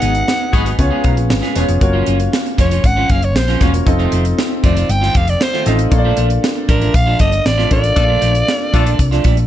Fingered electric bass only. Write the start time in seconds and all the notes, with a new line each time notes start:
0.02 G#1
0.53 G#1
0.79 C#2
1.05 B1
1.17 A#1
1.30 G#1
1.56 E1
1.69 F1
1.81 F#1
2.07 F#1
2.59 F1
2.84 G#1
3.10 F#1
3.36 A#1
3.61 E1
3.87 F1
4.13 F1
4.64 F1
4.89 G1
5.15 F1
5.67 A1
5.92 A#1
6.17 A#1
6.69 A1
6.94 A#1
7.20 G1
7.45 A1
7.71 A1
7.96 A#1
8.22 A#1
8.74 A#1
8.99 C2
9.25 A#1